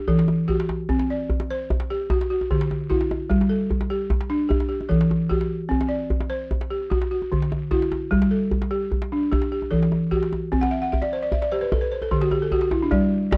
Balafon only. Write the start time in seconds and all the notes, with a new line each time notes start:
Already playing: G4
0.08 E3 A4
0.48 F#4 G4
0.89 C4
1.10 D5
1.51 C5
1.90 G4
2.10 F#4
2.30 F#4
2.51 D3 G4
2.90 E4 F#4
3.29 G3
3.49 A4
3.90 G4
4.30 D4
4.49 G4
4.69 G4
4.89 E3 A4
5.29 F#4 G4
5.69 C4
5.89 D5
6.30 C5
6.71 G4
6.90 F#4
7.11 F#4
7.32 D3
7.71 E4 F#4
8.11 G3
8.31 A4
8.71 G4
9.12 D4
9.31 G4
9.52 G4
9.71 E3 A4
10.11 F#4 G4
10.52 C4
10.61 F#5
10.71 E5
10.81 F#5
10.92 E5
11.01 D5
11.13 C5
11.22 D5
11.32 E5
11.42 D5
11.51 G4 C5
11.61 B4
11.72 A4
11.81 B4
11.91 C5
12.02 A4
12.11 D3 G4
12.21 F#4
12.32 G4
12.42 A4
12.52 F#4 G4
12.62 F#4
12.71 E4
12.83 D4
12.91 G3 D5
13.31 D5